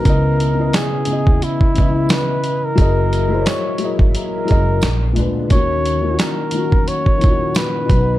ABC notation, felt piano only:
X:1
M:4/4
L:1/16
Q:"Swing 16ths" 1/4=88
K:D#phr
V:1 name="Felt piano"
[C,B,Ed]3 [C,B,Ed]3 [C,B,Ed]4 [C,B,Ed]6 | [F,EGAd]3 [F,EGA^Bc]3 [F,EGAd]4 [F,EGAd]2 z2 [A,,G,=D=B]2 | [D,A,CF]3 [D,A,CEF]3 [D,A,CF]4 [A,,D,CEF]4 [B,,B,CDB]2 |]